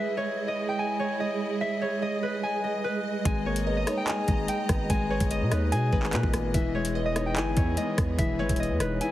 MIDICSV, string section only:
0, 0, Header, 1, 2, 480
1, 0, Start_track
1, 0, Tempo, 410959
1, 1880, Time_signature, 4, 2, 24, 8
1, 10647, End_track
2, 0, Start_track
2, 0, Title_t, "String section"
2, 0, Program_c, 0, 48
2, 0, Note_on_c, 0, 56, 81
2, 0, Note_on_c, 0, 64, 78
2, 0, Note_on_c, 0, 68, 76
2, 0, Note_on_c, 0, 75, 92
2, 3763, Note_off_c, 0, 64, 0
2, 3800, Note_on_c, 0, 82, 76
2, 7594, Note_off_c, 0, 56, 0
2, 7594, Note_off_c, 0, 68, 0
2, 7602, Note_off_c, 0, 82, 0
2, 7642, Note_on_c, 0, 52, 76
2, 7642, Note_on_c, 0, 59, 83
2, 7642, Note_on_c, 0, 68, 76
2, 10647, Note_off_c, 0, 52, 0
2, 10647, Note_off_c, 0, 59, 0
2, 10647, Note_off_c, 0, 68, 0
2, 10647, Note_off_c, 0, 75, 0
2, 10647, End_track
0, 0, End_of_file